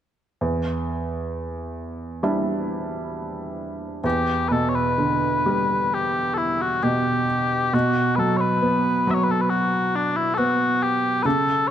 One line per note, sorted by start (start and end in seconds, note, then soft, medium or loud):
0.41 4.00 E2 soft
2.23 4.00 G3 soft
2.23 4.00 D4 soft
2.23 4.00 E4 soft
4.04 7.69 E2 soft
4.04 4.48 G4 medium
4.48 6.34 B2 soft
4.48 4.69 A4 soft
4.48 4.52 B4 soft
4.69 4.75 C#5 soft
4.75 5.94 B4 medium
4.98 6.79 D3 soft
5.46 7.25 G3 soft
5.94 6.34 G4 medium
6.34 6.61 E4 soft
6.34 6.38 A4 soft
6.61 6.83 F#4 medium
6.83 7.71 B2 soft
6.83 7.74 G4 medium
7.73 11.21 B2 soft
7.73 8.16 F#4 medium
8.16 9.06 F#3 soft
8.16 8.37 A4 medium
8.16 8.19 B4 medium
8.37 9.11 B4 medium
8.37 8.41 C#5 medium
8.62 10.34 B3 soft
9.07 10.78 F#3 soft
9.07 9.14 E5 medium
9.14 9.24 C#5 medium
9.24 9.31 B4 medium
9.31 9.41 A4 medium
9.41 9.50 B4 medium
9.50 9.95 F#4 medium
9.95 10.17 D4 soft
10.17 10.34 E4 medium
10.34 10.83 F#4 medium
10.34 10.38 A4 medium
10.38 11.23 B3 soft
10.83 11.23 G4 medium
11.23 11.71 C#3 soft
11.23 11.68 A4 medium
11.23 11.26 B4 medium